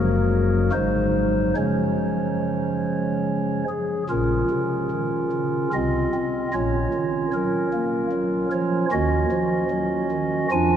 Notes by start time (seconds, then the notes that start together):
Already playing: F#1 F#2 F#3 A#3 F#4 A#4
0.72 G#1 G#2 F#3 G#3 D#4 C5
1.56 C#3 F3 G#3 C#4 C#5
3.69 G#4
4.09 A#1 A#2 C#4 F4 A#4
4.50 C3
4.91 D#3
5.32 C#3
5.73 C2 C3 C4 F4 D#5
6.14 C4
6.54 A#1 A#2 C#4 F4 C#5
6.94 D#3
7.33 F#3 A#4
7.73 A#3
8.12 F#3
8.52 F3 C#5
8.91 D#2 D#3 C#4 F#4 D#5
9.31 F3
9.71 F#3
10.11 D#3
10.51 F2 F3 D4 F4 G#5